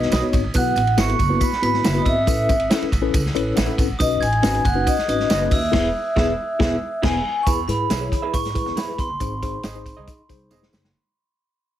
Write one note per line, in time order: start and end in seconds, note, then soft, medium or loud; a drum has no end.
0.00 0.30 D#5 medium
0.00 0.29 D#6 medium
0.00 snare soft
0.11 0.20 B1 medium
0.11 0.24 D#4 medium
0.11 0.25 F#4 medium
0.11 0.25 B4 medium
0.11 0.25 D#5 medium
0.11 snare loud
0.11 ride medium
0.11 tambourine loud
0.21 0.41 B3 medium
0.21 0.41 D#4 medium
0.21 0.41 F#4 medium
0.21 0.41 C#5 medium
0.33 0.42 G#1 medium
0.33 kick medium
0.33 ride medium
0.33 tambourine medium
0.44 0.53 A1 medium
0.54 0.72 B1 loud
0.54 0.80 B3 medium
0.54 0.80 E4 medium
0.54 0.80 F#4 medium
0.54 0.80 B4 medium
0.54 1.01 F#5 loud
0.54 0.96 F#6 medium
0.54 kick loud
0.54 ride medium
0.54 tambourine medium
0.76 0.93 A1 loud
0.76 ride medium
0.76 tambourine medium
0.87 ride soft
0.97 1.15 G#1 loud
0.97 1.17 B3 medium
0.97 1.17 E4 medium
0.97 1.11 E4 medium
0.97 1.17 F#4 medium
0.97 1.11 F#4 medium
0.97 1.17 A4 medium
0.97 1.11 B4 medium
0.97 1.11 E5 medium
0.97 1.44 C#6 loud
0.97 1.39 C#7 medium
0.97 snare loud
0.97 ride medium
0.97 tambourine medium
1.09 ride soft
1.19 1.37 F#1 medium
1.19 kick medium
1.19 ride medium
1.19 tambourine medium
1.29 1.49 B3 medium
1.29 1.49 E4 medium
1.29 1.49 F#4 medium
1.29 1.49 B4 medium
1.41 1.52 B5 loud
1.41 1.50 B6 medium
1.41 kick loud
1.41 ride medium
1.41 tambourine loud
1.51 muted upright bass stroke soft
1.51 snare soft
1.62 1.80 G#1 medium
1.62 1.82 B3 medium
1.62 1.82 E4 medium
1.62 1.82 F#4 medium
1.62 1.82 B4 medium
1.62 2.01 B5 loud
1.62 1.97 B6 medium
1.62 ride medium
1.62 tambourine medium
1.74 snare soft
1.84 2.02 F#1 medium
1.84 1.97 E4 medium
1.84 1.97 F#4 medium
1.84 1.98 B4 medium
1.84 1.98 E5 medium
1.84 snare loud
1.84 ride medium
1.84 tambourine loud
1.94 2.14 B3 medium
1.94 2.14 E4 medium
1.94 2.14 F#4 medium
1.94 2.14 B4 medium
1.94 2.05 D#6 medium
2.01 2.07 D#5 medium
2.05 2.23 G#1 medium
2.05 2.68 E5 medium
2.05 2.67 E6 medium
2.05 kick medium
2.05 ride medium
2.05 tambourine medium
2.27 2.45 A1 loud
2.27 2.53 C#4 medium
2.27 2.53 E4 medium
2.27 2.53 A4 medium
2.27 2.53 B4 medium
2.27 kick loud
2.27 ride medium
2.27 tambourine loud
2.49 2.67 G#1 medium
2.49 kick medium
2.49 ride medium
2.49 tambourine medium
2.60 ride soft
2.70 2.90 C#4 medium
2.70 2.83 C#4 medium
2.70 2.90 E4 medium
2.70 2.84 E4 loud
2.70 2.90 A4 medium
2.70 2.90 B4 medium
2.70 2.84 B4 medium
2.70 2.84 E5 loud
2.70 snare loud
2.70 ride medium
2.70 tambourine loud
2.81 muted upright bass stroke medium
2.81 ride soft
2.92 3.10 A1 loud
2.92 kick medium
2.92 ride medium
2.92 tambourine medium
3.02 3.22 C#4 loud
3.02 3.22 E4 medium
3.02 3.22 A4 loud
3.02 3.22 B4 loud
3.14 3.31 C#2 loud
3.14 kick loud
3.14 ride medium
3.14 tambourine loud
3.26 snare soft
3.35 3.53 A1 medium
3.35 3.54 C#4 medium
3.35 3.54 E4 medium
3.35 3.54 A4 medium
3.35 3.54 B4 loud
3.35 3.55 C#5 medium
3.35 ride medium
3.35 tambourine medium
3.56 3.66 A1 loud
3.56 3.70 C#4 medium
3.56 3.70 E4 medium
3.56 3.70 B4 loud
3.56 3.71 E5 medium
3.56 3.97 F#5 medium
3.56 snare loud
3.56 ride medium
3.56 tambourine loud
3.67 3.87 C#4 medium
3.67 3.87 E4 medium
3.67 3.87 A4 medium
3.67 3.87 B4 medium
3.78 3.87 G#1 medium
3.78 kick loud
3.78 ride medium
3.78 tambourine medium
3.88 3.98 A1 medium
3.99 4.17 B1 loud
3.99 4.25 C#4 medium
3.99 4.25 D#4 medium
3.99 4.26 F#4 medium
3.99 4.26 B4 medium
3.99 4.23 D#5 loud
3.99 4.20 D#6 medium
3.99 kick loud
3.99 ride medium
3.99 tambourine loud
4.21 4.39 A1 loud
4.21 4.67 G#5 loud
4.21 4.61 G#6 loud
4.21 ride medium
4.21 tambourine medium
4.32 ride soft
4.42 4.61 G#1 medium
4.42 4.62 C#4 medium
4.42 4.56 C#4 medium
4.42 4.62 D#4 medium
4.42 4.63 F#4 medium
4.42 4.56 F#4 medium
4.42 4.62 B4 medium
4.42 4.56 B4 loud
4.42 4.57 D#5 loud
4.42 snare loud
4.42 ride medium
4.42 tambourine loud
4.55 ride soft
4.65 4.82 F#1 loud
4.65 4.89 F#5 medium
4.65 4.85 F#6 medium
4.65 kick medium
4.65 ride medium
4.65 tambourine medium
4.75 4.95 C#4 medium
4.75 4.95 D#4 medium
4.75 4.95 F#4 medium
4.75 4.95 B4 medium
4.87 5.09 D#5 loud
4.87 5.07 D#6 medium
4.87 kick loud
4.87 ride medium
4.87 tambourine loud
4.97 muted upright bass stroke medium
4.97 snare soft
5.08 5.25 G#1 medium
5.08 5.28 C#4 medium
5.08 5.27 D#4 medium
5.08 5.28 F#4 medium
5.08 5.28 B4 medium
5.08 5.54 D#5 loud
5.08 5.49 D#6 medium
5.08 ride medium
5.08 tambourine medium
5.20 snare soft
5.29 5.47 F#1 medium
5.29 5.43 C#4 medium
5.29 5.43 F#4 loud
5.29 5.43 B4 medium
5.29 5.43 D#5 loud
5.29 snare loud
5.29 ride medium
5.29 tambourine loud
5.40 5.60 C#4 medium
5.40 5.60 D#4 medium
5.40 5.60 F#4 medium
5.40 5.60 B4 medium
5.51 5.69 D#2 loud
5.51 7.00 E5 medium
5.51 5.72 E6 medium
5.51 kick loud
5.51 open hi-hat medium
5.51 ride medium
5.51 tambourine medium
5.72 5.88 E1 loud
5.72 5.87 B3 loud
5.72 5.87 E4 loud
5.72 5.88 E4 loud
5.72 5.87 G#4 loud
5.72 5.88 G#4 loud
5.72 5.87 B4 medium
5.72 5.88 B4 loud
5.72 5.89 E5 medium
5.72 kick loud
5.72 snare loud
5.72 crash medium
6.16 6.31 E1 loud
6.16 6.31 B3 medium
6.16 6.31 E4 loud
6.16 6.31 E4 medium
6.16 6.31 G#4 loud
6.16 6.32 B4 loud
6.16 6.32 E5 loud
6.16 kick loud
6.16 snare medium
6.59 6.74 E1 loud
6.59 6.74 B3 medium
6.59 6.74 E4 medium
6.59 6.74 E4 loud
6.59 6.74 G#4 medium
6.59 6.75 G#4 medium
6.59 6.75 B4 medium
6.59 6.75 E5 medium
6.59 kick loud
6.59 snare loud
7.02 7.18 E1 loud
7.02 7.18 B3 medium
7.02 7.17 E4 loud
7.02 7.18 E4 medium
7.02 7.18 G#4 medium
7.02 7.18 G#4 loud
7.02 7.18 B4 medium
7.02 7.19 E5 medium
7.02 7.43 G#5 medium
7.02 kick loud
7.02 snare loud
7.02 crash medium
7.43 7.64 E2 loud
7.43 7.59 E4 medium
7.43 7.59 G#4 medium
7.43 7.60 B4 medium
7.43 7.67 B5 medium
7.43 7.48 C#6 medium
7.43 kick loud
7.43 closed hi-hat medium
7.43 tambourine loud
7.49 7.69 B5 loud
7.68 7.85 G#2 medium
7.68 7.88 E4 medium
7.68 7.88 G#4 medium
7.68 7.88 B4 medium
7.68 8.29 B5 medium
7.68 8.36 B5 loud
7.68 closed hi-hat medium
7.68 tambourine medium
7.90 8.07 B1 medium
7.90 8.03 E4 medium
7.90 8.03 G#4 medium
7.90 8.03 B4 medium
7.90 8.04 E5 medium
7.90 snare loud
7.90 closed hi-hat medium
7.90 tambourine loud
8.01 8.20 E4 medium
8.01 8.20 G#4 medium
8.01 8.20 C#5 medium
8.12 8.29 E3 loud
8.12 kick medium
8.12 closed hi-hat medium
8.12 tambourine soft
8.22 8.33 E4 soft
8.22 8.33 G#4 medium
8.22 8.33 B4 medium
8.22 8.32 E5 medium
8.33 8.60 G#2 loud
8.33 8.46 E4 medium
8.33 8.46 G#4 medium
8.33 8.46 B4 medium
8.33 8.74 C#6 medium
8.33 8.79 C#6 loud
8.33 kick loud
8.33 closed hi-hat medium
8.33 tambourine loud
8.45 snare soft
8.45 closed hi-hat medium
8.54 8.74 E4 medium
8.54 8.74 G#4 medium
8.54 8.74 B4 medium
8.54 kick medium
8.54 closed hi-hat medium
8.54 tambourine medium
8.66 8.83 E2 loud
8.66 snare soft
8.76 8.89 E4 medium
8.76 8.90 G#4 medium
8.76 8.90 B4 medium
8.76 8.90 E5 loud
8.76 8.97 B5 medium
8.76 9.00 B5 loud
8.76 snare loud
8.76 closed hi-hat medium
8.76 tambourine loud
8.87 9.07 E4 medium
8.87 9.07 G#4 medium
8.87 9.07 B4 medium
8.98 9.07 E2 medium
8.98 10.26 C6 medium
8.98 kick medium
8.98 closed hi-hat medium
8.98 tambourine medium
9.09 9.18 F#1 medium
9.20 9.55 G#1 loud
9.20 9.33 D#4 medium
9.20 9.34 G#4 medium
9.20 9.33 C5 medium
9.20 kick medium
9.20 closed hi-hat medium
9.20 tambourine loud
9.42 9.62 D#4 medium
9.42 9.62 G#4 medium
9.42 9.62 C5 medium
9.42 kick medium
9.42 closed hi-hat medium
9.42 tambourine medium
9.63 9.90 G#1 loud
9.63 9.77 D#4 medium
9.63 9.77 G#4 medium
9.63 9.77 C5 medium
9.63 9.77 D#5 medium
9.63 snare loud
9.63 closed hi-hat medium
9.63 tambourine loud
9.75 9.94 D#4 medium
9.75 9.95 G#4 medium
9.75 9.95 C5 loud
9.86 kick medium
9.86 closed hi-hat medium
9.86 tambourine soft
9.97 10.05 C2 medium
9.97 10.07 D#4 medium
9.97 10.07 G#4 medium
9.97 10.07 C5 medium
9.97 10.07 D#5 medium
10.07 10.20 D#4 medium
10.07 10.21 G#4 medium
10.07 10.21 D#5 medium
10.07 kick loud
10.07 closed hi-hat medium
10.07 tambourine medium
10.18 muted upright bass stroke soft
10.29 10.47 C2 medium
10.29 10.49 D#4 medium
10.29 10.49 G#4 medium
10.29 10.49 C5 loud
10.29 kick medium
10.29 closed hi-hat medium
10.29 tambourine medium
10.50 10.68 E1 loud
10.50 10.64 D#4 medium
10.50 10.64 G#4 medium
10.50 10.64 C5 medium
10.50 10.65 D#5 medium
10.50 tambourine loud
10.62 10.81 D#4 medium
10.62 10.82 G#4 medium
10.62 10.82 C5 medium
10.62 snare medium
10.72 10.90 F#1 medium
10.72 snare loud
10.72 tambourine medium
10.84 snare medium